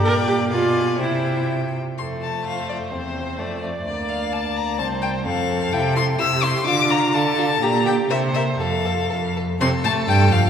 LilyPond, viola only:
\new Staff \with { instrumentName = "Viola" } { \time 2/4 \key f \major \tempo 4 = 127 bes'8 g'8 f'4 | e'4 r4 | a'4 c''4~ | c''4 d''4~ |
d''2 | c''4 a'4~ | a'4 g'4 | f'4 a'4 |
g'4 c''4 | a'4. r8 | c'8 a8 g8 f8 | }